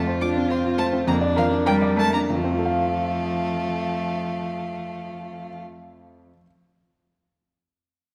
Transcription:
0.00 1.03 F2 medium
0.00 0.20 A3 medium
0.00 1.04 F4 medium
0.07 0.30 C5 medium
0.21 0.52 D4 medium
0.21 0.45 F4 medium
0.21 0.29 D6 loud
0.37 0.59 C4 medium
0.50 0.79 C4 medium
0.50 0.73 C5 medium
0.50 0.58 C6 medium
0.64 0.87 F4 medium
0.78 1.07 A3 medium
0.78 1.02 C5 medium
0.78 0.86 A5 loud
0.93 1.07 C4 medium
1.07 2.26 F2 medium
1.07 1.16 A#3 loud
1.07 2.05 D4 medium
1.07 1.16 A#5 loud
1.21 1.45 D5 medium
1.36 1.44 F3 loud
1.36 1.60 A#4 medium
1.36 1.45 F5 loud
1.51 1.76 D4 medium
1.66 1.98 G3 loud
1.66 1.91 A#4 loud
1.66 1.74 G5 loud
1.82 2.08 D5 medium
1.97 2.16 A3 loud
1.97 2.24 A#4 medium
1.97 2.13 A5 loud
2.14 2.30 A#3 medium
2.14 2.30 D4 medium
2.14 2.20 A#5 loud
2.30 6.30 F2 medium
2.30 5.60 F3 medium
2.30 5.60 A3 medium
2.30 5.60 F5 medium
2.37 6.33 F3 medium
2.44 6.37 C4 medium
2.51 6.40 F4 medium
2.58 6.44 A4 medium
2.65 6.47 F5 medium

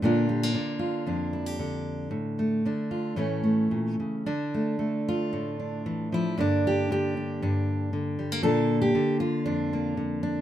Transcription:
0.02 0.55 A#2 medium
0.02 0.53 D3 medium
0.02 0.29 A#3 medium
0.02 0.54 D4 medium
0.02 0.78 F4 medium
0.29 0.43 G3 soft
0.43 2.11 A#3 soft
0.54 1.58 D3 medium
0.54 1.06 D4 medium
0.79 1.32 F4 soft
1.06 2.07 F2 soft
1.06 2.07 D4 medium
1.33 1.46 E4 soft
1.46 2.11 G4 soft
1.59 2.64 D3 soft
2.11 2.64 A2 medium
2.39 3.15 A3 soft
2.65 3.16 D3 soft
2.65 3.15 D4 soft
2.91 3.14 F4 soft
3.16 3.71 A2 medium
3.16 4.23 E3 soft
3.16 3.42 A3 soft
3.16 4.24 C#4 soft
3.43 4.23 A3 soft
3.71 3.99 A#2 soft
4.00 4.26 C#3 soft
4.26 5.86 D3 medium
4.26 5.58 D4 medium
4.54 4.78 A3 soft
4.79 6.35 A3 medium
5.08 6.13 F4 medium
5.33 6.38 A2 medium
5.60 6.40 D4 soft
5.86 6.12 E3 medium
6.12 6.38 F3 medium
6.12 6.39 E4 medium
6.38 7.41 G2 medium
6.38 6.89 D3 soft
6.38 8.18 A#3 soft
6.38 7.16 D4 medium
6.67 6.91 G4 medium
6.91 7.92 D3 medium
6.91 8.19 G4 medium
7.17 7.42 D4 soft
7.42 8.41 G2 medium
7.42 8.45 D4 soft
7.93 8.43 D3 soft
8.19 8.32 G3 soft
8.32 8.43 A#3 soft
8.43 8.94 A#2 medium
8.43 8.94 D3 soft
8.43 9.72 A#3 soft
8.43 9.44 D4 medium
8.43 8.81 A4 medium
8.81 9.20 G4 medium
8.95 9.96 D3 medium
9.20 9.97 F4 medium
9.46 10.41 F2 medium
9.46 10.22 D4 medium
9.73 10.41 A#3 soft
9.97 10.41 D3 medium
10.23 10.41 D4 medium

